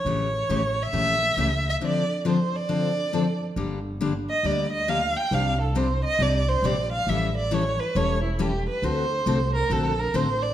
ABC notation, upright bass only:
X:1
M:4/4
L:1/8
Q:"Swing" 1/4=137
K:Dm
V:1 name="Upright bass" clef=bass
A,,,2 A,,,2 B,,,2 ^C,,2 | z8 | [K:Gm] G,,,4 D,,4 | C,,4 C,,2 B,,,2 |
A,,,4 =E,,,4 | D,,2 C,,2 B,,,2 A,,,2 |]